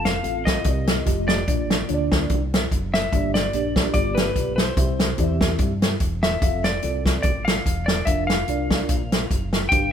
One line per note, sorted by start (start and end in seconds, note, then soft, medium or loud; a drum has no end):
0.00 0.18 F1 medium
0.05 0.48 F5 loud
0.05 snare loud
0.05 closed hi-hat medium
0.23 0.60 A1 medium
0.23 0.64 C4 medium
0.23 0.65 F4 medium
0.23 0.65 A4 medium
0.23 0.65 F5 medium
0.23 closed hi-hat medium
0.45 1.27 D#5 medium
0.45 kick medium
0.45 snare loud
0.45 closed hi-hat medium
0.64 1.00 C2 loud
0.64 1.04 C3 medium
0.64 0.99 C4 medium
0.64 0.99 G4 medium
0.64 1.00 A#4 medium
0.64 0.71 D5 medium
0.64 kick loud
0.64 closed hi-hat medium
0.71 1.02 D#5 medium
0.87 snare loud
0.87 closed hi-hat medium
1.06 1.42 F1 medium
1.06 1.40 A3 medium
1.06 1.40 F4 medium
1.06 1.40 G4 medium
1.06 1.41 D#5 medium
1.06 kick loud
1.06 closed hi-hat medium
1.28 2.07 D5 medium
1.28 snare loud
1.28 closed hi-hat medium
1.47 1.83 A#1 medium
1.47 2.08 A#2 medium
1.47 1.75 A#3 medium
1.47 1.75 D4 medium
1.47 1.75 F4 medium
1.47 1.75 D5 medium
1.47 kick loud
1.47 closed hi-hat medium
1.70 snare loud
1.70 closed hi-hat medium
1.88 2.25 D2 medium
1.88 2.40 A#3 medium
1.88 2.40 D4 medium
1.88 2.40 F4 medium
1.88 1.94 C#5 medium
1.88 closed hi-hat medium
1.94 2.43 D5 loud
2.12 kick medium
2.12 snare loud
2.12 closed hi-hat medium
2.30 2.65 C2 medium
2.30 kick loud
2.30 closed hi-hat medium
2.54 snare loud
2.54 closed hi-hat medium
2.71 3.07 F#1 medium
2.71 kick medium
2.71 closed hi-hat medium
2.94 3.34 E5 loud
2.94 snare loud
2.94 closed hi-hat medium
3.13 3.48 G1 loud
3.13 3.73 G2 medium
3.13 3.40 A#3 medium
3.13 3.40 D4 medium
3.13 3.40 G4 medium
3.13 3.40 D5 medium
3.13 kick loud
3.13 closed hi-hat medium
3.34 3.92 D5 loud
3.34 snare medium
3.34 closed hi-hat medium
3.53 3.89 A#1 medium
3.53 3.95 A#3 medium
3.53 3.95 D4 medium
3.53 3.94 G4 medium
3.53 3.94 D5 medium
3.53 closed hi-hat medium
3.76 kick medium
3.76 snare loud
3.76 closed hi-hat medium
3.94 4.30 G1 loud
3.94 4.55 G2 medium
3.94 4.62 B3 medium
3.94 4.62 F4 medium
3.94 4.63 G4 medium
3.94 4.15 D5 medium
3.94 4.63 D5 medium
3.94 kick loud
3.94 closed hi-hat medium
4.15 4.54 B4 medium
4.15 snare loud
4.15 closed hi-hat medium
4.36 4.71 B1 medium
4.36 kick medium
4.36 closed hi-hat medium
4.56 5.36 C5 medium
4.56 snare loud
4.56 closed hi-hat medium
4.77 5.12 C2 loud
4.77 5.37 C3 medium
4.77 5.04 C4 medium
4.77 5.04 E4 medium
4.77 5.05 G4 medium
4.77 5.05 E5 medium
4.77 kick loud
4.77 closed hi-hat medium
5.00 snare loud
5.00 closed hi-hat medium
5.18 5.54 E2 medium
5.18 5.70 C4 medium
5.18 5.70 E4 medium
5.18 5.70 G4 medium
5.18 5.24 D5 medium
5.18 kick medium
5.18 closed hi-hat medium
5.24 5.73 E5 medium
5.41 kick medium
5.41 snare loud
5.41 closed hi-hat medium
5.58 5.95 G2 medium
5.58 kick loud
5.58 closed hi-hat medium
5.82 snare loud
5.82 closed hi-hat medium
6.00 6.36 E1 medium
6.00 kick medium
6.00 closed hi-hat medium
6.23 6.66 E5 medium
6.23 snare loud
6.23 closed hi-hat medium
6.42 6.77 F1 medium
6.42 6.69 C4 medium
6.42 6.69 F4 medium
6.42 6.69 A4 medium
6.42 6.70 F5 medium
6.42 kick loud
6.42 closed hi-hat medium
6.64 7.03 D5 medium
6.64 snare medium
6.64 closed hi-hat medium
6.82 7.19 C2 medium
6.82 7.35 C4 medium
6.82 7.35 F4 medium
6.82 7.35 A4 medium
6.82 7.35 D5 medium
6.82 closed hi-hat medium
7.06 kick medium
7.06 snare loud
7.06 closed hi-hat medium
7.22 7.59 A1 loud
7.22 7.47 D5 medium
7.22 kick loud
7.22 closed hi-hat medium
7.45 7.84 F5 medium
7.45 snare loud
7.45 closed hi-hat medium
7.66 8.01 E1 medium
7.66 kick medium
7.66 closed hi-hat medium
7.86 8.06 D5 medium
7.86 snare loud
7.86 closed hi-hat medium
8.05 8.42 F1 medium
8.05 8.34 D4 medium
8.05 8.34 F4 medium
8.05 8.34 A#4 medium
8.05 8.27 E5 medium
8.05 8.34 F5 medium
8.05 kick loud
8.05 closed hi-hat medium
8.27 9.48 F5 medium
8.27 snare medium
8.27 closed hi-hat medium
8.48 8.83 C2 medium
8.48 9.00 D4 medium
8.48 9.00 F4 medium
8.48 9.01 A#4 medium
8.48 9.01 D5 medium
8.48 closed hi-hat medium
8.71 kick medium
8.71 snare loud
8.71 closed hi-hat medium
8.89 9.25 A#1 medium
8.89 kick loud
8.89 closed hi-hat medium
9.12 snare loud
9.12 closed hi-hat medium
9.31 9.66 F#1 medium
9.31 kick medium
9.31 closed hi-hat medium
9.53 snare medium
9.53 closed hi-hat medium
9.69 9.92 G1 medium
9.69 9.92 G2 medium
9.69 9.92 D4 medium
9.69 9.92 G4 medium
9.69 9.92 B4 medium
9.69 9.92 F5 medium
9.69 9.92 G5 loud
9.69 kick loud
9.69 closed hi-hat medium